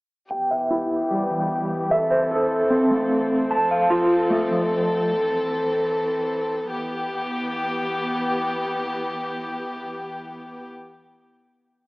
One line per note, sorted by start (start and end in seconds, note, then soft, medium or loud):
0.31 3.48 E3 medium
0.31 1.89 B3 medium
0.31 1.89 G4 medium
0.31 1.51 G5 loud
0.51 1.71 E5 medium
0.71 1.91 E4 medium
1.11 1.91 G3 medium
1.30 1.90 E3 medium
1.91 6.67 C4 medium
1.91 3.49 A4 medium
1.91 3.11 E5 loud
2.10 3.30 C5 medium
2.31 3.51 A4 medium
2.70 3.50 C4 medium
2.91 3.51 A3 medium
3.51 5.09 F3 medium
3.51 6.67 A4 medium
3.51 4.71 A5 loud
3.71 4.91 F5 medium
3.90 5.10 F4 medium
4.30 5.10 A3 medium
4.51 5.11 F3 medium
5.11 6.69 E3 medium
6.71 10.67 E3 medium
6.71 10.67 B3 medium
6.71 10.67 G4 medium